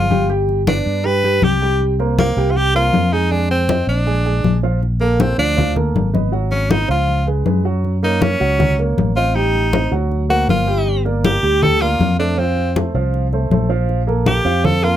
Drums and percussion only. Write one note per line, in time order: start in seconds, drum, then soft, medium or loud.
0.11 high conga medium
0.30 high conga soft
0.49 high conga soft
0.67 high conga medium
1.05 high conga soft
1.23 high conga soft
1.42 high conga medium
1.80 high conga soft
2.00 high conga soft
2.19 high conga medium
2.37 high conga soft
2.57 high conga soft
2.75 high conga soft
2.94 high conga medium
3.32 high conga soft
3.50 high conga soft
3.69 high conga medium
4.07 high conga soft
4.26 high conga soft
4.44 high conga medium
4.83 high conga soft
5.02 high conga soft
5.20 high conga medium
5.39 high conga soft
5.58 high conga soft
5.58 low conga medium
5.76 high conga soft
5.76 low conga medium
5.96 high conga medium
6.15 high conga medium
6.33 high conga soft
6.52 high conga soft
6.71 high conga medium
7.09 high conga soft
7.27 high conga soft
7.46 high conga medium
7.84 high conga soft
8.03 high conga soft
8.22 high conga medium
8.41 high conga soft
8.60 high conga soft
8.60 low conga medium
8.79 high conga soft
8.98 high conga medium
9.36 high conga soft
9.55 high conga soft
9.73 high conga medium
10.11 high conga soft
10.30 high conga soft
10.49 high conga medium
10.87 high conga soft
11.06 high conga soft
11.25 high conga loud
11.44 high conga soft
11.63 high conga soft
11.63 low conga medium
11.82 high conga soft
12.01 high conga medium
12.39 high conga soft
12.57 high conga soft
12.76 high conga medium
13.14 high conga soft
13.33 high conga soft
13.51 high conga medium
13.89 high conga soft
14.09 high conga soft
14.26 high conga medium
14.46 high conga soft
14.65 high conga soft
14.65 low conga medium
14.83 high conga soft